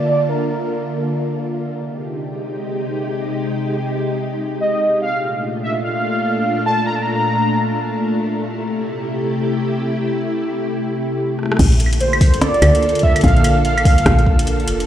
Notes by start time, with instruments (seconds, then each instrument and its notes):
Already playing: string machine D3 A#3 F4 A5
0.09 soft synth lead D5
0.29 soft synth lead A#4
1.73 string machine C3 G#3 D#4 G4
4.61 soft synth lead D#5
5.02 string machine A#2 A3 D4 F4, soft synth lead F5
5.63 soft synth lead E5
5.84 soft synth lead F5
6.66 soft synth lead A5
6.87 soft synth lead A#5
6.96 soft synth lead A5
7.02 soft synth lead A#5
8.30 string machine C3 E4 G4
11.39 cross-stick
11.43 cross-stick
11.46 cross-stick
11.52 cross-stick
11.57 fm bass A#1, string machine D3 A#3 F4 A4, kick, cross-stick, closed hi-hat, crash
11.72 closed hi-hat
11.80 closed hi-hat
11.86 claves
11.93 closed hi-hat
12.00 soft synth lead C5, closed hi-hat
12.13 closed hi-hat, claves
12.21 kick, open hi-hat
12.34 closed hi-hat
12.41 soft synth lead D5, cross-stick, closed hi-hat
12.54 closed hi-hat
12.62 fm bass D2, closed hi-hat, claves
12.75 closed hi-hat
12.83 closed hi-hat
12.89 closed hi-hat
12.95 closed hi-hat
12.99 soft synth lead E5, kick, closed hi-hat
13.16 closed hi-hat, claves
13.21 fm bass A#1, kick, closed hi-hat
13.24 soft synth lead F5, closed hi-hat
13.28 closed hi-hat
13.36 closed hi-hat
13.44 closed hi-hat, claves
13.65 soft synth lead F5, closed hi-hat
13.78 closed hi-hat, claves
13.85 kick, open hi-hat
13.98 closed hi-hat
14.06 fm bass A#1, kick, cross-stick, closed hi-hat
14.19 closed hi-hat
14.26 kick
14.39 closed hi-hat
14.47 closed hi-hat
14.60 closed hi-hat
14.67 fm bass F1, closed hi-hat
14.80 closed hi-hat